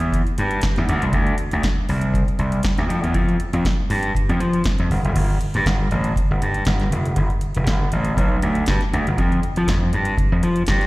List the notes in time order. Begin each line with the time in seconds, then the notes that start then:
Already playing: E2
0.00 closed hi-hat
0.13 kick, closed hi-hat
0.27 closed hi-hat
0.38 G2, closed hi-hat
0.51 closed hi-hat
0.61 kick, snare, closed hi-hat
0.76 E2, snare, closed hi-hat
0.89 D2, closed hi-hat
1.02 C2, closed hi-hat
1.13 D2, kick, closed hi-hat
1.27 closed hi-hat
1.38 closed hi-hat
1.51 D2, closed hi-hat
1.63 kick, snare, closed hi-hat
1.89 C2, open hi-hat
2.01 closed hi-hat
2.14 kick, closed hi-hat
2.28 closed hi-hat
2.39 C2, closed hi-hat
2.52 closed hi-hat
2.63 kick, snare, closed hi-hat
2.78 D2, snare, closed hi-hat
2.89 F2, closed hi-hat
3.03 E2, closed hi-hat
3.14 F2, kick, closed hi-hat
3.29 closed hi-hat
3.40 closed hi-hat
3.53 F2, closed hi-hat
3.65 kick, snare, closed hi-hat
3.90 G2, open hi-hat
4.03 closed hi-hat
4.15 kick, closed hi-hat
4.29 F2, closed hi-hat
4.40 F3, closed hi-hat
4.53 closed hi-hat
4.64 kick, snare, closed hi-hat
4.79 F2, closed hi-hat
4.90 G1, kick, open hi-hat
5.04 F1, closed hi-hat
5.15 G1, kick, closed hi-hat, crash
5.30 closed hi-hat
5.41 closed hi-hat
5.54 G2, closed hi-hat
5.66 G1, kick, snare, closed hi-hat
5.91 A1, closed hi-hat
6.04 closed hi-hat
6.16 kick, closed hi-hat
6.31 G1
6.42 G2, closed hi-hat
6.54 closed hi-hat
6.65 G1, kick, snare, closed hi-hat
6.80 snare, closed hi-hat
6.92 F1, closed hi-hat
7.06 closed hi-hat
7.16 G1, kick, closed hi-hat
7.30 closed hi-hat
7.41 closed hi-hat
7.55 F1, closed hi-hat
7.67 G1, kick, snare, closed hi-hat
7.92 A1, closed hi-hat
8.05 closed hi-hat
8.17 B1, kick, closed hi-hat
8.42 D2, closed hi-hat
8.55 closed hi-hat
8.66 G2, kick, snare, closed hi-hat
8.81 snare, closed hi-hat
8.93 D2, closed hi-hat
9.07 G1, closed hi-hat
9.18 F2, kick, closed hi-hat
9.32 closed hi-hat
9.43 closed hi-hat
9.56 F3, closed hi-hat
9.68 F2, kick, snare, closed hi-hat
9.93 G2, closed hi-hat
10.05 closed hi-hat
10.18 kick, closed hi-hat
10.32 F2
10.43 F3, closed hi-hat
10.56 closed hi-hat
10.67 G2, kick, snare, closed hi-hat
10.81 snare, closed hi-hat